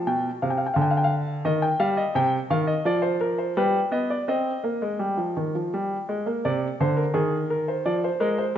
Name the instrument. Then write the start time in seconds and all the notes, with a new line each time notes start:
grand piano
0.07 B2 G5
0.42 C3 F5
0.50 G5
0.58 F5
0.66 G5
0.74 D3 F5
0.82 G5
0.91 F5
0.97 G5
1.04 F5
1.45 D#3 D#5
1.62 G5
1.80 G3 F5
1.97 D#5
2.15 C3 G5
2.50 D#3 F5
2.67 D#5
2.85 F3 D5
3.02 C5
3.21 A#4
3.38 C5
3.57 G3 B4
3.92 B3 D#5
4.10 D5
4.28 C4 D#5
4.64 A#3
4.82 G#3
4.99 G3
5.17 F3
5.37 D#3
5.55 F3
5.74 G3
6.09 G#3
6.26 A#3
6.45 C3 D5
6.80 D3 C5
6.97 A#4
7.14 D#3 G#4
7.50 A#4
7.68 C5
7.86 F3 D5
8.04 C5
8.20 G#3 A#4
8.38 C5